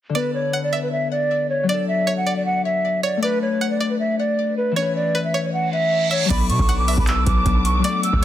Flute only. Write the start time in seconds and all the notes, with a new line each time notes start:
0.15 B4
0.34 C#5
0.63 D5
0.82 B4
0.92 E5
1.11 D5
1.50 C#5
1.69 D5
1.88 E5
2.17 F#5
2.36 D5
2.46 F#5
2.65 E5
3.03 D5
3.23 B4
3.42 C#5
3.71 D5
3.90 B4
3.99 E5
4.19 D5
4.57 B4
4.76 C#5
4.96 D5
5.24 E5
5.44 C#5
5.53 F#5
5.73 E5
6.11 C#5
6.30 B5
6.50 C#6
6.78 D6
6.98 B5
7.07 E6
7.27 D6
7.65 C#6
7.84 D6
8.04 E6